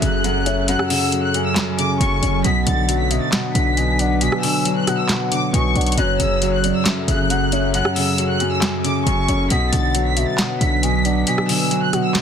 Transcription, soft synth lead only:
0, 0, Header, 1, 2, 480
1, 0, Start_track
1, 0, Key_signature, 3, "minor"
1, 0, Tempo, 441176
1, 741, Time_signature, 4, 2, 24, 8
1, 13292, End_track
2, 0, Start_track
2, 0, Title_t, "Soft synth lead"
2, 0, Program_c, 0, 80
2, 0, Note_on_c, 0, 76, 91
2, 232, Note_off_c, 0, 76, 0
2, 262, Note_on_c, 0, 78, 97
2, 490, Note_off_c, 0, 78, 0
2, 497, Note_on_c, 0, 76, 89
2, 727, Note_off_c, 0, 76, 0
2, 741, Note_on_c, 0, 78, 97
2, 1418, Note_off_c, 0, 78, 0
2, 1464, Note_on_c, 0, 80, 94
2, 2619, Note_off_c, 0, 80, 0
2, 2661, Note_on_c, 0, 78, 107
2, 3338, Note_off_c, 0, 78, 0
2, 3379, Note_on_c, 0, 76, 90
2, 3608, Note_off_c, 0, 76, 0
2, 3620, Note_on_c, 0, 78, 90
2, 4072, Note_off_c, 0, 78, 0
2, 4098, Note_on_c, 0, 80, 85
2, 4327, Note_off_c, 0, 80, 0
2, 4342, Note_on_c, 0, 78, 86
2, 4570, Note_off_c, 0, 78, 0
2, 4584, Note_on_c, 0, 80, 120
2, 5259, Note_off_c, 0, 80, 0
2, 5304, Note_on_c, 0, 78, 88
2, 5980, Note_off_c, 0, 78, 0
2, 6022, Note_on_c, 0, 80, 97
2, 6249, Note_off_c, 0, 80, 0
2, 6266, Note_on_c, 0, 78, 93
2, 6492, Note_off_c, 0, 78, 0
2, 6501, Note_on_c, 0, 73, 110
2, 7178, Note_off_c, 0, 73, 0
2, 7221, Note_on_c, 0, 74, 94
2, 7449, Note_off_c, 0, 74, 0
2, 7463, Note_on_c, 0, 76, 90
2, 7913, Note_off_c, 0, 76, 0
2, 7944, Note_on_c, 0, 78, 100
2, 8171, Note_off_c, 0, 78, 0
2, 8181, Note_on_c, 0, 76, 82
2, 8409, Note_off_c, 0, 76, 0
2, 8422, Note_on_c, 0, 78, 96
2, 9099, Note_off_c, 0, 78, 0
2, 9144, Note_on_c, 0, 80, 94
2, 10299, Note_off_c, 0, 80, 0
2, 10341, Note_on_c, 0, 78, 109
2, 11018, Note_off_c, 0, 78, 0
2, 11061, Note_on_c, 0, 76, 85
2, 11289, Note_off_c, 0, 76, 0
2, 11302, Note_on_c, 0, 78, 92
2, 11753, Note_off_c, 0, 78, 0
2, 11780, Note_on_c, 0, 80, 85
2, 12009, Note_off_c, 0, 80, 0
2, 12024, Note_on_c, 0, 78, 87
2, 12251, Note_off_c, 0, 78, 0
2, 12268, Note_on_c, 0, 80, 119
2, 12942, Note_off_c, 0, 80, 0
2, 12986, Note_on_c, 0, 78, 89
2, 13292, Note_off_c, 0, 78, 0
2, 13292, End_track
0, 0, End_of_file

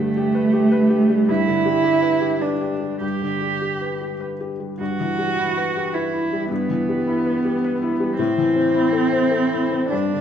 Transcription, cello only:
0, 0, Header, 1, 2, 480
1, 0, Start_track
1, 0, Key_signature, 1, "major"
1, 0, Tempo, 562852
1, 1097, Time_signature, 3, 2, 24, 8
1, 2056, Tempo, 593472
1, 4456, Tempo, 559180
1, 7336, Tempo, 595238
1, 8526, End_track
2, 0, Start_track
2, 0, Title_t, "Cello"
2, 0, Program_c, 0, 42
2, 0, Note_on_c, 0, 57, 126
2, 1100, Note_on_c, 0, 64, 127
2, 1113, Note_off_c, 0, 57, 0
2, 2058, Note_on_c, 0, 62, 97
2, 2070, Note_off_c, 0, 64, 0
2, 2539, Note_off_c, 0, 62, 0
2, 2544, Note_on_c, 0, 67, 100
2, 3485, Note_off_c, 0, 67, 0
2, 3981, Note_on_c, 0, 66, 110
2, 4939, Note_on_c, 0, 64, 91
2, 4952, Note_off_c, 0, 66, 0
2, 5411, Note_off_c, 0, 64, 0
2, 5416, Note_on_c, 0, 59, 116
2, 6829, Note_off_c, 0, 59, 0
2, 6851, Note_on_c, 0, 60, 127
2, 8257, Note_off_c, 0, 60, 0
2, 8272, Note_on_c, 0, 62, 117
2, 8526, Note_off_c, 0, 62, 0
2, 8526, End_track
0, 0, End_of_file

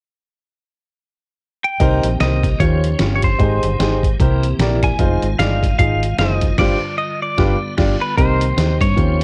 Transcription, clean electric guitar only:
0, 0, Header, 1, 2, 480
1, 0, Start_track
1, 0, Key_signature, -3, "minor"
1, 0, Tempo, 398142
1, 252, Time_signature, 4, 2, 24, 8
1, 11139, End_track
2, 0, Start_track
2, 0, Title_t, "Clean electric guitar"
2, 0, Program_c, 0, 27
2, 1982, Note_on_c, 0, 79, 104
2, 2654, Note_off_c, 0, 79, 0
2, 2659, Note_on_c, 0, 75, 80
2, 3134, Note_on_c, 0, 73, 82
2, 3151, Note_off_c, 0, 75, 0
2, 3790, Note_off_c, 0, 73, 0
2, 3805, Note_on_c, 0, 73, 55
2, 3903, Note_off_c, 0, 73, 0
2, 3908, Note_on_c, 0, 72, 73
2, 4817, Note_off_c, 0, 72, 0
2, 5834, Note_on_c, 0, 80, 102
2, 6493, Note_off_c, 0, 80, 0
2, 6498, Note_on_c, 0, 77, 88
2, 6943, Note_off_c, 0, 77, 0
2, 6976, Note_on_c, 0, 77, 91
2, 7457, Note_off_c, 0, 77, 0
2, 7462, Note_on_c, 0, 75, 80
2, 7938, Note_off_c, 0, 75, 0
2, 7943, Note_on_c, 0, 74, 80
2, 8409, Note_off_c, 0, 74, 0
2, 8414, Note_on_c, 0, 75, 81
2, 8705, Note_off_c, 0, 75, 0
2, 8709, Note_on_c, 0, 74, 71
2, 9332, Note_off_c, 0, 74, 0
2, 9662, Note_on_c, 0, 71, 68
2, 9851, Note_off_c, 0, 71, 0
2, 9856, Note_on_c, 0, 72, 79
2, 10573, Note_off_c, 0, 72, 0
2, 10625, Note_on_c, 0, 73, 88
2, 11139, Note_off_c, 0, 73, 0
2, 11139, End_track
0, 0, End_of_file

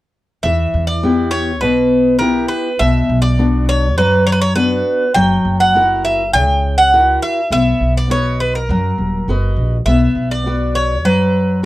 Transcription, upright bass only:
0, 0, Header, 1, 2, 480
1, 0, Start_track
1, 0, Tempo, 589391
1, 362, Time_signature, 4, 2, 24, 8
1, 9489, End_track
2, 0, Start_track
2, 0, Title_t, "Upright bass"
2, 0, Program_c, 0, 32
2, 359, Note_on_c, 0, 40, 91
2, 528, Note_off_c, 0, 40, 0
2, 602, Note_on_c, 0, 40, 82
2, 1318, Note_off_c, 0, 40, 0
2, 1318, Note_on_c, 0, 35, 79
2, 1990, Note_off_c, 0, 35, 0
2, 2279, Note_on_c, 0, 35, 90
2, 2447, Note_off_c, 0, 35, 0
2, 2517, Note_on_c, 0, 35, 85
2, 3243, Note_off_c, 0, 35, 0
2, 3243, Note_on_c, 0, 42, 82
2, 3913, Note_off_c, 0, 42, 0
2, 4198, Note_on_c, 0, 30, 82
2, 4366, Note_off_c, 0, 30, 0
2, 4437, Note_on_c, 0, 30, 79
2, 5157, Note_on_c, 0, 37, 77
2, 5169, Note_off_c, 0, 30, 0
2, 5829, Note_off_c, 0, 37, 0
2, 6114, Note_on_c, 0, 35, 75
2, 6283, Note_off_c, 0, 35, 0
2, 6358, Note_on_c, 0, 35, 71
2, 7077, Note_on_c, 0, 42, 92
2, 7089, Note_off_c, 0, 35, 0
2, 7246, Note_off_c, 0, 42, 0
2, 7314, Note_on_c, 0, 27, 72
2, 7532, Note_off_c, 0, 27, 0
2, 7556, Note_on_c, 0, 30, 75
2, 7773, Note_off_c, 0, 30, 0
2, 7791, Note_on_c, 0, 34, 79
2, 8010, Note_off_c, 0, 34, 0
2, 8029, Note_on_c, 0, 35, 84
2, 8200, Note_off_c, 0, 35, 0
2, 8266, Note_on_c, 0, 35, 76
2, 8994, Note_off_c, 0, 35, 0
2, 8994, Note_on_c, 0, 42, 78
2, 9489, Note_off_c, 0, 42, 0
2, 9489, End_track
0, 0, End_of_file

